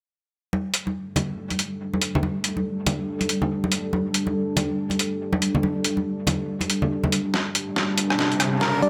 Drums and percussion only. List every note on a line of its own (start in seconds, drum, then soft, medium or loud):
0.53 high conga medium
0.74 closed hi-hat medium
0.87 high conga medium
1.16 closed hi-hat medium
1.16 high conga medium
1.16 low conga medium
1.50 closed hi-hat soft
1.50 high conga medium
1.59 closed hi-hat medium
1.94 high conga medium
2.02 closed hi-hat medium
2.15 low conga medium
2.23 high conga medium
2.44 closed hi-hat medium
2.57 high conga medium
2.86 closed hi-hat medium
2.86 high conga medium
2.86 low conga medium
3.21 closed hi-hat soft
3.21 high conga medium
3.29 closed hi-hat medium
3.42 low conga medium
3.64 high conga medium
3.72 closed hi-hat medium
3.93 high conga medium
4.14 closed hi-hat medium
4.27 high conga medium
4.57 closed hi-hat medium
4.57 high conga medium
4.57 low conga medium
4.90 closed hi-hat soft
4.90 high conga medium
4.99 closed hi-hat medium
5.33 high conga loud
5.42 closed hi-hat medium
5.55 low conga medium
5.63 high conga medium
5.84 closed hi-hat medium
5.97 high conga medium
6.27 closed hi-hat medium
6.27 high conga medium
6.27 low conga medium
6.61 closed hi-hat soft
6.61 high conga medium
6.70 closed hi-hat medium
6.82 low conga medium
7.04 high conga medium
7.04 low conga medium
7.12 closed hi-hat medium
7.34 snare soft
7.55 closed hi-hat medium
7.76 snare soft
7.98 closed hi-hat medium
8.10 cross-stick medium
8.19 snare soft
8.32 closed hi-hat soft
8.40 cross-stick medium
8.40 closed hi-hat medium
8.61 snare medium
8.82 closed hi-hat medium